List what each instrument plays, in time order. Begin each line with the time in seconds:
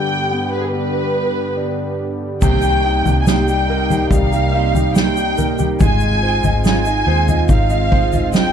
Already playing: grand piano G2 D3 G3, analog synth pad G2 D3 B3 G4, violin section G5
0.31 grand piano B3
0.53 violin section B4
0.60 violin section G#4
0.66 violin section B4
0.73 grand piano G3
1.57 grand piano D4
2.41 fingered electric bass C2, steel-string acoustic guitar C3 A#3 D#4 G4 C5, grand piano C3, analog synth pad C3 G3 A#3 D#4, violin section G5, kick, floor tom, crash, shaker
2.62 grand piano G4, shaker
2.83 steel-string acoustic guitar A#3 D#4 G4 C5, grand piano D#4
3.05 fingered electric bass C2, grand piano G4, floor tom, shaker
3.21 violin section G#5
3.26 steel-string acoustic guitar C3 A#3 D#4 G4 C5, grand piano G3, violin section G5, snare, shaker
3.47 steel-string acoustic guitar D#4 G4 C5, grand piano G4, shaker
3.68 steel-string acoustic guitar A#3 D#4 G4 C5, grand piano A#4
3.89 steel-string acoustic guitar D#4 G4 C5, grand piano G4, floor tom, shaker
4.10 fingered electric bass C2, grand piano G3, violin section F5, kick, floor tom, shaker
4.31 steel-string acoustic guitar D#4 G4 C5, grand piano G4, shaker
4.53 steel-string acoustic guitar A#3 D#4 G4 C5, grand piano D#4
4.74 steel-string acoustic guitar D#4 G4 C5, grand piano G4, floor tom, shaker
4.95 steel-string acoustic guitar C3 A#3 D#4 G4 C5, grand piano G3, violin section G5, snare, shaker
5.17 grand piano G4, shaker
5.37 steel-string acoustic guitar A#3 D#4 G4 C5, grand piano A#4, floor tom, shaker
5.59 grand piano G4, floor tom, shaker
5.79 fingered electric bass G#1, steel-string acoustic guitar G#3 D#4 F4 C5, analog synth pad G#3 C4 F4, grand piano G#3, violin section G#5, kick, floor tom, shaker
6.00 grand piano D#5, shaker
6.22 steel-string acoustic guitar G#3 D#4 F4 C5, grand piano C5
6.43 fingered electric bass G#1, grand piano D#5, floor tom, shaker
6.64 steel-string acoustic guitar G#3 D#4 F4 C5, grand piano D#4, violin section G#5, snare, shaker
6.85 steel-string acoustic guitar D#4 F4 C5, grand piano D#5, shaker
7.06 fingered electric bass D#2, steel-string acoustic guitar G#3 D#4 F4 C5, grand piano C5
7.28 steel-string acoustic guitar D#4 F4 C5, grand piano D#5, floor tom, shaker
7.49 fingered electric bass G#1, grand piano D#4, violin section F5, kick, floor tom, shaker
7.70 steel-string acoustic guitar D#4 F4 C5, grand piano D#5, shaker
7.91 steel-string acoustic guitar G#3 D#4 F4 C5, grand piano C5, kick
8.12 steel-string acoustic guitar D#4 F4 C5, grand piano D#5, floor tom, shaker
8.33 steel-string acoustic guitar G#3 D#4 F4 C5, grand piano D#4, violin section G5, snare, shaker